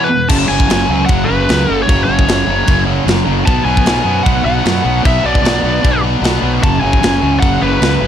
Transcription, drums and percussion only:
0.29 kick, crash
0.60 kick
0.70 snare, crash
1.08 kick, crash
1.49 snare, crash
1.89 kick, crash
2.19 kick
2.28 snare, crash
2.67 kick, crash
3.08 snare, crash
3.47 kick, crash
3.77 kick
3.86 snare, crash
4.26 kick, crash
4.66 snare, crash
5.05 kick, crash
5.35 kick
5.45 snare, crash
5.85 kick, crash
6.24 snare, crash
6.63 kick, crash
6.93 kick
7.03 snare, crash
7.42 kick, crash
7.82 snare, crash

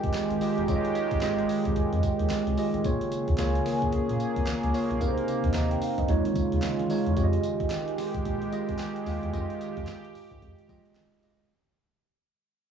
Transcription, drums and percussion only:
0.04 kick, closed hi-hat
0.14 snare, clap, closed hi-hat, tambourine
0.30 closed hi-hat
0.41 open hi-hat, tambourine
0.58 closed hi-hat
0.68 kick, closed hi-hat, tambourine
0.85 closed hi-hat
0.95 closed hi-hat, tambourine
1.11 kick, closed hi-hat
1.21 snare, clap, closed hi-hat, tambourine
1.38 closed hi-hat
1.49 open hi-hat, tambourine
1.65 kick, closed hi-hat
1.76 kick, closed hi-hat
1.93 closed hi-hat
2.03 kick, closed hi-hat, tambourine
2.19 closed hi-hat
2.30 snare, clap, closed hi-hat, tambourine
2.47 closed hi-hat
2.57 open hi-hat, tambourine
2.74 closed hi-hat
2.84 kick, closed hi-hat, tambourine
3.01 closed hi-hat
3.12 closed hi-hat, tambourine
3.28 kick, closed hi-hat
3.38 snare, clap, closed hi-hat, tambourine
3.55 closed hi-hat
3.66 snare, open hi-hat, tambourine
3.82 kick, closed hi-hat
3.92 kick, closed hi-hat
4.09 closed hi-hat
4.20 closed hi-hat, tambourine
4.36 kick, closed hi-hat
4.46 snare, clap, closed hi-hat, tambourine
4.63 closed hi-hat
4.74 open hi-hat, tambourine
4.91 closed hi-hat
5.01 kick, closed hi-hat, tambourine
5.18 closed hi-hat
5.28 closed hi-hat, tambourine
5.44 kick, closed hi-hat
5.54 snare, clap, closed hi-hat, tambourine
5.71 closed hi-hat
5.82 open hi-hat, tambourine
5.98 kick, closed hi-hat
6.08 kick, closed hi-hat
6.25 closed hi-hat
6.35 kick, closed hi-hat, tambourine
6.52 closed hi-hat
6.62 snare, clap, closed hi-hat, tambourine
6.79 closed hi-hat
6.90 open hi-hat, tambourine
7.06 closed hi-hat
7.17 kick, closed hi-hat, tambourine
7.33 closed hi-hat
7.43 closed hi-hat, tambourine
7.60 kick, closed hi-hat
7.70 snare, clap, closed hi-hat, tambourine
7.88 closed hi-hat
7.98 snare, open hi-hat, tambourine
8.15 kick, closed hi-hat
8.25 kick, closed hi-hat
8.42 closed hi-hat
8.52 closed hi-hat, tambourine
8.69 kick, closed hi-hat
8.79 snare, clap, closed hi-hat, tambourine
8.96 closed hi-hat
9.06 open hi-hat, tambourine
9.23 closed hi-hat
9.33 kick, closed hi-hat, tambourine
9.50 closed hi-hat
9.61 closed hi-hat, tambourine
9.77 kick, closed hi-hat
9.87 snare, clap, closed hi-hat, tambourine
10.05 closed hi-hat
10.15 open hi-hat, tambourine
10.31 kick
10.42 kick, closed hi-hat
10.58 closed hi-hat
10.69 kick, closed hi-hat, tambourine
10.85 closed hi-hat
10.95 snare, clap, closed hi-hat, tambourine
11.12 closed hi-hat
11.23 open hi-hat, tambourine
11.39 closed hi-hat

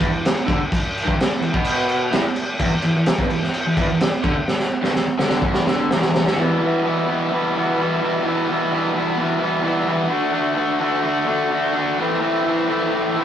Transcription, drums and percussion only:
0.01 kick, crash
0.25 snare, crash
0.48 kick, crash
0.72 kick, crash
0.98 crash
1.08 kick
1.20 snare, crash
1.42 crash
1.54 kick
1.65 crash
1.89 crash
2.13 snare, crash
2.36 crash
2.59 kick, crash
2.82 crash
3.06 snare, crash
3.18 kick
3.30 crash
3.43 snare
3.54 crash
3.77 kick, crash
4.01 snare, crash
4.24 kick, crash
4.48 snare
4.59 snare
4.84 snare
4.95 snare
5.19 snare
5.29 snare
5.42 kick
5.54 snare
5.67 snare
5.91 snare
6.02 snare
6.15 snare
6.27 snare

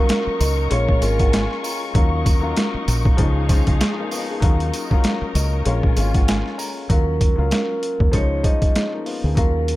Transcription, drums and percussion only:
0.09 snare, closed hi-hat
0.41 closed hi-hat, tambourine
0.71 closed hi-hat
0.89 kick
1.02 closed hi-hat, tambourine
1.19 kick, closed hi-hat
1.33 snare, closed hi-hat
1.51 snare
1.64 open hi-hat, tambourine
1.95 kick, closed hi-hat
2.26 kick, closed hi-hat, tambourine
2.57 snare, closed hi-hat
2.88 closed hi-hat, tambourine
3.05 kick
3.18 kick, closed hi-hat
3.49 kick, closed hi-hat, tambourine
3.67 kick, closed hi-hat
3.81 snare, closed hi-hat
4.11 open hi-hat, tambourine
4.42 kick, closed hi-hat
4.60 closed hi-hat
4.74 closed hi-hat, tambourine
4.91 kick
5.04 snare, closed hi-hat
5.35 closed hi-hat, tambourine
5.66 closed hi-hat
5.83 kick
5.96 closed hi-hat, tambourine
6.14 kick, closed hi-hat
6.28 snare, closed hi-hat
6.46 snare
6.59 open hi-hat, tambourine
6.90 kick, closed hi-hat
7.21 kick, closed hi-hat
7.51 snare, closed hi-hat
7.83 closed hi-hat
8.00 kick
8.13 kick, closed hi-hat
8.44 kick, closed hi-hat
8.62 kick, closed hi-hat
8.76 snare, closed hi-hat
9.06 open hi-hat
9.37 kick, closed hi-hat
9.68 closed hi-hat

